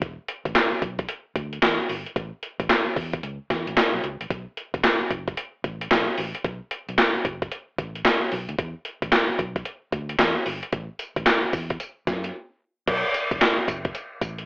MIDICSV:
0, 0, Header, 1, 4, 480
1, 0, Start_track
1, 0, Key_signature, 2, "minor"
1, 0, Tempo, 535714
1, 15, Time_signature, 4, 2, 24, 8
1, 12953, End_track
2, 0, Start_track
2, 0, Title_t, "Fingered electric bass"
2, 0, Program_c, 0, 33
2, 15, Note_on_c, 0, 28, 107
2, 141, Note_off_c, 0, 28, 0
2, 407, Note_on_c, 0, 33, 88
2, 481, Note_off_c, 0, 33, 0
2, 737, Note_on_c, 0, 35, 91
2, 936, Note_off_c, 0, 35, 0
2, 1217, Note_on_c, 0, 38, 84
2, 1416, Note_off_c, 0, 38, 0
2, 1457, Note_on_c, 0, 40, 96
2, 1583, Note_off_c, 0, 40, 0
2, 1697, Note_on_c, 0, 31, 89
2, 1822, Note_off_c, 0, 31, 0
2, 1938, Note_on_c, 0, 33, 100
2, 2063, Note_off_c, 0, 33, 0
2, 2329, Note_on_c, 0, 33, 85
2, 2402, Note_off_c, 0, 33, 0
2, 2657, Note_on_c, 0, 40, 95
2, 2856, Note_off_c, 0, 40, 0
2, 2896, Note_on_c, 0, 37, 90
2, 3022, Note_off_c, 0, 37, 0
2, 3139, Note_on_c, 0, 40, 80
2, 3264, Note_off_c, 0, 40, 0
2, 3289, Note_on_c, 0, 33, 83
2, 3362, Note_off_c, 0, 33, 0
2, 3529, Note_on_c, 0, 35, 94
2, 3602, Note_off_c, 0, 35, 0
2, 3616, Note_on_c, 0, 37, 99
2, 3742, Note_off_c, 0, 37, 0
2, 3766, Note_on_c, 0, 33, 75
2, 3841, Note_off_c, 0, 33, 0
2, 3856, Note_on_c, 0, 35, 98
2, 3982, Note_off_c, 0, 35, 0
2, 4247, Note_on_c, 0, 28, 85
2, 4321, Note_off_c, 0, 28, 0
2, 4577, Note_on_c, 0, 30, 97
2, 4776, Note_off_c, 0, 30, 0
2, 5057, Note_on_c, 0, 33, 76
2, 5257, Note_off_c, 0, 33, 0
2, 5298, Note_on_c, 0, 35, 104
2, 5423, Note_off_c, 0, 35, 0
2, 5538, Note_on_c, 0, 33, 100
2, 5663, Note_off_c, 0, 33, 0
2, 5776, Note_on_c, 0, 35, 94
2, 5902, Note_off_c, 0, 35, 0
2, 6170, Note_on_c, 0, 35, 84
2, 6243, Note_off_c, 0, 35, 0
2, 6496, Note_on_c, 0, 30, 95
2, 6696, Note_off_c, 0, 30, 0
2, 6975, Note_on_c, 0, 33, 90
2, 7175, Note_off_c, 0, 33, 0
2, 7458, Note_on_c, 0, 35, 92
2, 7583, Note_off_c, 0, 35, 0
2, 7607, Note_on_c, 0, 38, 83
2, 7681, Note_off_c, 0, 38, 0
2, 7695, Note_on_c, 0, 40, 95
2, 7821, Note_off_c, 0, 40, 0
2, 8085, Note_on_c, 0, 33, 83
2, 8160, Note_off_c, 0, 33, 0
2, 8414, Note_on_c, 0, 35, 96
2, 8615, Note_off_c, 0, 35, 0
2, 8895, Note_on_c, 0, 38, 82
2, 9095, Note_off_c, 0, 38, 0
2, 9134, Note_on_c, 0, 40, 104
2, 9261, Note_off_c, 0, 40, 0
2, 9375, Note_on_c, 0, 31, 97
2, 9501, Note_off_c, 0, 31, 0
2, 9614, Note_on_c, 0, 33, 108
2, 9741, Note_off_c, 0, 33, 0
2, 10005, Note_on_c, 0, 33, 92
2, 10080, Note_off_c, 0, 33, 0
2, 10336, Note_on_c, 0, 40, 86
2, 10536, Note_off_c, 0, 40, 0
2, 10817, Note_on_c, 0, 42, 90
2, 11016, Note_off_c, 0, 42, 0
2, 11538, Note_on_c, 0, 35, 109
2, 11663, Note_off_c, 0, 35, 0
2, 11930, Note_on_c, 0, 28, 86
2, 12002, Note_off_c, 0, 28, 0
2, 12258, Note_on_c, 0, 30, 96
2, 12457, Note_off_c, 0, 30, 0
2, 12738, Note_on_c, 0, 33, 82
2, 12937, Note_off_c, 0, 33, 0
2, 12953, End_track
3, 0, Start_track
3, 0, Title_t, "Muted fingered electric bass strokes"
3, 648, Note_on_c, 9, 29, 48
3, 737, Note_off_c, 9, 29, 0
3, 2568, Note_on_c, 9, 29, 45
3, 2658, Note_off_c, 9, 29, 0
3, 4490, Note_on_c, 9, 29, 46
3, 4579, Note_off_c, 9, 29, 0
3, 6411, Note_on_c, 9, 29, 44
3, 6501, Note_off_c, 9, 29, 0
3, 8328, Note_on_c, 9, 29, 47
3, 8417, Note_off_c, 9, 29, 0
3, 10249, Note_on_c, 9, 29, 45
3, 10339, Note_off_c, 9, 29, 0
3, 12171, Note_on_c, 9, 29, 52
3, 12260, Note_off_c, 9, 29, 0
3, 12953, End_track
4, 0, Start_track
4, 0, Title_t, "Drums"
4, 14, Note_on_c, 9, 42, 77
4, 15, Note_on_c, 9, 36, 124
4, 103, Note_off_c, 9, 42, 0
4, 104, Note_off_c, 9, 36, 0
4, 253, Note_on_c, 9, 42, 76
4, 343, Note_off_c, 9, 42, 0
4, 406, Note_on_c, 9, 36, 81
4, 409, Note_on_c, 9, 42, 51
4, 494, Note_on_c, 9, 38, 100
4, 495, Note_off_c, 9, 36, 0
4, 495, Note_off_c, 9, 42, 0
4, 495, Note_on_c, 9, 42, 75
4, 499, Note_on_c, 9, 39, 90
4, 583, Note_off_c, 9, 38, 0
4, 585, Note_off_c, 9, 42, 0
4, 589, Note_off_c, 9, 39, 0
4, 735, Note_on_c, 9, 36, 104
4, 737, Note_on_c, 9, 42, 68
4, 824, Note_off_c, 9, 36, 0
4, 827, Note_off_c, 9, 42, 0
4, 885, Note_on_c, 9, 42, 48
4, 887, Note_on_c, 9, 36, 94
4, 973, Note_off_c, 9, 42, 0
4, 973, Note_on_c, 9, 42, 95
4, 977, Note_off_c, 9, 36, 0
4, 1062, Note_off_c, 9, 42, 0
4, 1215, Note_on_c, 9, 36, 85
4, 1215, Note_on_c, 9, 42, 66
4, 1305, Note_off_c, 9, 36, 0
4, 1305, Note_off_c, 9, 42, 0
4, 1369, Note_on_c, 9, 42, 55
4, 1456, Note_off_c, 9, 42, 0
4, 1456, Note_on_c, 9, 38, 121
4, 1456, Note_on_c, 9, 42, 67
4, 1461, Note_on_c, 9, 39, 92
4, 1545, Note_off_c, 9, 42, 0
4, 1546, Note_off_c, 9, 38, 0
4, 1551, Note_off_c, 9, 39, 0
4, 1697, Note_on_c, 9, 46, 66
4, 1786, Note_off_c, 9, 46, 0
4, 1850, Note_on_c, 9, 42, 52
4, 1936, Note_on_c, 9, 36, 127
4, 1938, Note_off_c, 9, 42, 0
4, 1938, Note_on_c, 9, 42, 86
4, 2026, Note_off_c, 9, 36, 0
4, 2027, Note_off_c, 9, 42, 0
4, 2175, Note_on_c, 9, 42, 74
4, 2265, Note_off_c, 9, 42, 0
4, 2327, Note_on_c, 9, 36, 89
4, 2330, Note_on_c, 9, 42, 53
4, 2416, Note_off_c, 9, 36, 0
4, 2416, Note_on_c, 9, 38, 101
4, 2417, Note_off_c, 9, 42, 0
4, 2417, Note_on_c, 9, 42, 75
4, 2421, Note_on_c, 9, 39, 84
4, 2505, Note_off_c, 9, 38, 0
4, 2507, Note_off_c, 9, 42, 0
4, 2511, Note_off_c, 9, 39, 0
4, 2656, Note_on_c, 9, 36, 95
4, 2658, Note_on_c, 9, 46, 66
4, 2746, Note_off_c, 9, 36, 0
4, 2748, Note_off_c, 9, 46, 0
4, 2807, Note_on_c, 9, 42, 46
4, 2809, Note_on_c, 9, 36, 91
4, 2896, Note_off_c, 9, 42, 0
4, 2896, Note_on_c, 9, 42, 92
4, 2899, Note_off_c, 9, 36, 0
4, 2986, Note_off_c, 9, 42, 0
4, 3137, Note_on_c, 9, 36, 89
4, 3139, Note_on_c, 9, 38, 59
4, 3139, Note_on_c, 9, 42, 69
4, 3227, Note_off_c, 9, 36, 0
4, 3228, Note_off_c, 9, 42, 0
4, 3229, Note_off_c, 9, 38, 0
4, 3290, Note_on_c, 9, 42, 55
4, 3378, Note_off_c, 9, 42, 0
4, 3378, Note_on_c, 9, 38, 120
4, 3378, Note_on_c, 9, 42, 70
4, 3384, Note_on_c, 9, 39, 95
4, 3468, Note_off_c, 9, 38, 0
4, 3468, Note_off_c, 9, 42, 0
4, 3473, Note_off_c, 9, 39, 0
4, 3616, Note_on_c, 9, 42, 65
4, 3706, Note_off_c, 9, 42, 0
4, 3768, Note_on_c, 9, 42, 53
4, 3856, Note_on_c, 9, 36, 127
4, 3857, Note_off_c, 9, 42, 0
4, 3857, Note_on_c, 9, 42, 84
4, 3945, Note_off_c, 9, 36, 0
4, 3947, Note_off_c, 9, 42, 0
4, 4096, Note_on_c, 9, 42, 75
4, 4185, Note_off_c, 9, 42, 0
4, 4246, Note_on_c, 9, 36, 94
4, 4249, Note_on_c, 9, 42, 51
4, 4334, Note_on_c, 9, 38, 102
4, 4336, Note_off_c, 9, 36, 0
4, 4336, Note_off_c, 9, 42, 0
4, 4336, Note_on_c, 9, 42, 67
4, 4339, Note_on_c, 9, 39, 81
4, 4424, Note_off_c, 9, 38, 0
4, 4425, Note_off_c, 9, 42, 0
4, 4429, Note_off_c, 9, 39, 0
4, 4575, Note_on_c, 9, 36, 97
4, 4576, Note_on_c, 9, 42, 67
4, 4665, Note_off_c, 9, 36, 0
4, 4666, Note_off_c, 9, 42, 0
4, 4728, Note_on_c, 9, 42, 47
4, 4729, Note_on_c, 9, 36, 93
4, 4815, Note_off_c, 9, 42, 0
4, 4815, Note_on_c, 9, 42, 84
4, 4818, Note_off_c, 9, 36, 0
4, 4904, Note_off_c, 9, 42, 0
4, 5055, Note_on_c, 9, 36, 86
4, 5056, Note_on_c, 9, 42, 64
4, 5145, Note_off_c, 9, 36, 0
4, 5145, Note_off_c, 9, 42, 0
4, 5209, Note_on_c, 9, 42, 60
4, 5297, Note_off_c, 9, 42, 0
4, 5297, Note_on_c, 9, 38, 123
4, 5297, Note_on_c, 9, 42, 72
4, 5302, Note_on_c, 9, 39, 94
4, 5386, Note_off_c, 9, 38, 0
4, 5386, Note_off_c, 9, 42, 0
4, 5392, Note_off_c, 9, 39, 0
4, 5533, Note_on_c, 9, 46, 64
4, 5622, Note_off_c, 9, 46, 0
4, 5686, Note_on_c, 9, 42, 55
4, 5775, Note_off_c, 9, 42, 0
4, 5775, Note_on_c, 9, 36, 126
4, 5775, Note_on_c, 9, 42, 90
4, 5864, Note_off_c, 9, 36, 0
4, 5864, Note_off_c, 9, 42, 0
4, 6012, Note_on_c, 9, 42, 76
4, 6102, Note_off_c, 9, 42, 0
4, 6170, Note_on_c, 9, 42, 51
4, 6255, Note_on_c, 9, 38, 115
4, 6257, Note_off_c, 9, 42, 0
4, 6257, Note_on_c, 9, 42, 73
4, 6260, Note_on_c, 9, 39, 90
4, 6345, Note_off_c, 9, 38, 0
4, 6346, Note_off_c, 9, 42, 0
4, 6350, Note_off_c, 9, 39, 0
4, 6495, Note_on_c, 9, 36, 100
4, 6497, Note_on_c, 9, 42, 69
4, 6585, Note_off_c, 9, 36, 0
4, 6586, Note_off_c, 9, 42, 0
4, 6649, Note_on_c, 9, 36, 94
4, 6649, Note_on_c, 9, 42, 49
4, 6734, Note_off_c, 9, 42, 0
4, 6734, Note_on_c, 9, 42, 89
4, 6738, Note_off_c, 9, 36, 0
4, 6823, Note_off_c, 9, 42, 0
4, 6975, Note_on_c, 9, 36, 95
4, 6976, Note_on_c, 9, 42, 68
4, 7064, Note_off_c, 9, 36, 0
4, 7065, Note_off_c, 9, 42, 0
4, 7127, Note_on_c, 9, 42, 56
4, 7214, Note_off_c, 9, 42, 0
4, 7214, Note_on_c, 9, 38, 120
4, 7214, Note_on_c, 9, 42, 69
4, 7219, Note_on_c, 9, 39, 100
4, 7303, Note_off_c, 9, 38, 0
4, 7303, Note_off_c, 9, 42, 0
4, 7309, Note_off_c, 9, 39, 0
4, 7452, Note_on_c, 9, 46, 65
4, 7541, Note_off_c, 9, 46, 0
4, 7605, Note_on_c, 9, 42, 51
4, 7693, Note_off_c, 9, 42, 0
4, 7693, Note_on_c, 9, 42, 81
4, 7694, Note_on_c, 9, 36, 127
4, 7783, Note_off_c, 9, 36, 0
4, 7783, Note_off_c, 9, 42, 0
4, 7930, Note_on_c, 9, 42, 74
4, 8020, Note_off_c, 9, 42, 0
4, 8084, Note_on_c, 9, 36, 87
4, 8087, Note_on_c, 9, 42, 53
4, 8172, Note_on_c, 9, 38, 111
4, 8174, Note_off_c, 9, 36, 0
4, 8174, Note_off_c, 9, 42, 0
4, 8174, Note_on_c, 9, 42, 72
4, 8178, Note_on_c, 9, 39, 86
4, 8262, Note_off_c, 9, 38, 0
4, 8263, Note_off_c, 9, 42, 0
4, 8267, Note_off_c, 9, 39, 0
4, 8414, Note_on_c, 9, 36, 100
4, 8416, Note_on_c, 9, 42, 68
4, 8503, Note_off_c, 9, 36, 0
4, 8506, Note_off_c, 9, 42, 0
4, 8565, Note_on_c, 9, 42, 50
4, 8566, Note_on_c, 9, 36, 90
4, 8651, Note_off_c, 9, 42, 0
4, 8651, Note_on_c, 9, 42, 90
4, 8656, Note_off_c, 9, 36, 0
4, 8740, Note_off_c, 9, 42, 0
4, 8893, Note_on_c, 9, 36, 92
4, 8893, Note_on_c, 9, 42, 68
4, 8982, Note_off_c, 9, 42, 0
4, 8983, Note_off_c, 9, 36, 0
4, 9044, Note_on_c, 9, 42, 54
4, 9131, Note_off_c, 9, 42, 0
4, 9131, Note_on_c, 9, 38, 116
4, 9131, Note_on_c, 9, 42, 70
4, 9136, Note_on_c, 9, 39, 94
4, 9220, Note_off_c, 9, 42, 0
4, 9221, Note_off_c, 9, 38, 0
4, 9226, Note_off_c, 9, 39, 0
4, 9371, Note_on_c, 9, 46, 64
4, 9460, Note_off_c, 9, 46, 0
4, 9523, Note_on_c, 9, 42, 54
4, 9610, Note_off_c, 9, 42, 0
4, 9610, Note_on_c, 9, 42, 83
4, 9612, Note_on_c, 9, 36, 127
4, 9700, Note_off_c, 9, 42, 0
4, 9702, Note_off_c, 9, 36, 0
4, 9849, Note_on_c, 9, 54, 70
4, 9850, Note_on_c, 9, 42, 79
4, 9938, Note_off_c, 9, 54, 0
4, 9940, Note_off_c, 9, 42, 0
4, 10004, Note_on_c, 9, 36, 91
4, 10005, Note_on_c, 9, 42, 52
4, 10091, Note_on_c, 9, 38, 113
4, 10092, Note_off_c, 9, 42, 0
4, 10092, Note_on_c, 9, 42, 78
4, 10092, Note_on_c, 9, 54, 81
4, 10094, Note_off_c, 9, 36, 0
4, 10096, Note_on_c, 9, 39, 95
4, 10181, Note_off_c, 9, 38, 0
4, 10181, Note_off_c, 9, 54, 0
4, 10182, Note_off_c, 9, 42, 0
4, 10186, Note_off_c, 9, 39, 0
4, 10332, Note_on_c, 9, 54, 68
4, 10334, Note_on_c, 9, 36, 92
4, 10335, Note_on_c, 9, 46, 65
4, 10422, Note_off_c, 9, 54, 0
4, 10424, Note_off_c, 9, 36, 0
4, 10424, Note_off_c, 9, 46, 0
4, 10485, Note_on_c, 9, 42, 49
4, 10488, Note_on_c, 9, 36, 91
4, 10572, Note_on_c, 9, 54, 68
4, 10573, Note_off_c, 9, 42, 0
4, 10573, Note_on_c, 9, 42, 94
4, 10577, Note_off_c, 9, 36, 0
4, 10662, Note_off_c, 9, 42, 0
4, 10662, Note_off_c, 9, 54, 0
4, 10815, Note_on_c, 9, 42, 67
4, 10816, Note_on_c, 9, 36, 94
4, 10816, Note_on_c, 9, 38, 57
4, 10816, Note_on_c, 9, 54, 66
4, 10905, Note_off_c, 9, 36, 0
4, 10905, Note_off_c, 9, 38, 0
4, 10905, Note_off_c, 9, 42, 0
4, 10905, Note_off_c, 9, 54, 0
4, 10967, Note_on_c, 9, 42, 60
4, 11057, Note_off_c, 9, 42, 0
4, 11535, Note_on_c, 9, 49, 114
4, 11536, Note_on_c, 9, 42, 82
4, 11537, Note_on_c, 9, 36, 123
4, 11625, Note_off_c, 9, 42, 0
4, 11625, Note_off_c, 9, 49, 0
4, 11626, Note_off_c, 9, 36, 0
4, 11774, Note_on_c, 9, 54, 70
4, 11775, Note_on_c, 9, 42, 74
4, 11864, Note_off_c, 9, 54, 0
4, 11865, Note_off_c, 9, 42, 0
4, 11928, Note_on_c, 9, 36, 96
4, 11932, Note_on_c, 9, 42, 55
4, 12017, Note_off_c, 9, 36, 0
4, 12018, Note_on_c, 9, 38, 114
4, 12019, Note_on_c, 9, 54, 87
4, 12020, Note_off_c, 9, 42, 0
4, 12020, Note_on_c, 9, 42, 73
4, 12024, Note_on_c, 9, 39, 97
4, 12108, Note_off_c, 9, 38, 0
4, 12109, Note_off_c, 9, 42, 0
4, 12109, Note_off_c, 9, 54, 0
4, 12113, Note_off_c, 9, 39, 0
4, 12256, Note_on_c, 9, 36, 99
4, 12256, Note_on_c, 9, 54, 73
4, 12259, Note_on_c, 9, 42, 68
4, 12346, Note_off_c, 9, 36, 0
4, 12346, Note_off_c, 9, 54, 0
4, 12348, Note_off_c, 9, 42, 0
4, 12407, Note_on_c, 9, 42, 54
4, 12409, Note_on_c, 9, 36, 89
4, 12495, Note_on_c, 9, 54, 70
4, 12496, Note_off_c, 9, 42, 0
4, 12496, Note_on_c, 9, 42, 91
4, 12499, Note_off_c, 9, 36, 0
4, 12585, Note_off_c, 9, 54, 0
4, 12586, Note_off_c, 9, 42, 0
4, 12736, Note_on_c, 9, 36, 91
4, 12737, Note_on_c, 9, 42, 66
4, 12737, Note_on_c, 9, 54, 69
4, 12826, Note_off_c, 9, 36, 0
4, 12826, Note_off_c, 9, 42, 0
4, 12827, Note_off_c, 9, 54, 0
4, 12888, Note_on_c, 9, 42, 55
4, 12953, Note_off_c, 9, 42, 0
4, 12953, End_track
0, 0, End_of_file